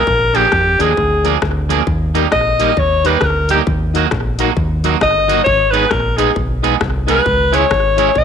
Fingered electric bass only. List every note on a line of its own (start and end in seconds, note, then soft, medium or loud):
0.07 0.46 A#1 loud
0.52 0.76 F2 medium
0.80 0.95 D#2 medium
0.98 1.36 D2 loud
1.43 1.81 D2 loud
1.87 2.25 D#2 loud
2.32 2.70 A#1 medium
2.77 3.15 D#2 medium
3.22 3.60 D2 medium
3.67 4.05 D#2 loud
4.12 4.50 A#1 medium
4.57 4.95 D#2 loud
5.02 5.40 G1 medium
5.47 5.84 G#1 loud
5.92 6.29 A#1 medium
6.36 6.74 B1 medium
6.81 7.19 C2 medium
7.26 7.64 C#2 loud
7.71 8.09 G#1 medium
8.16 8.24 B1 medium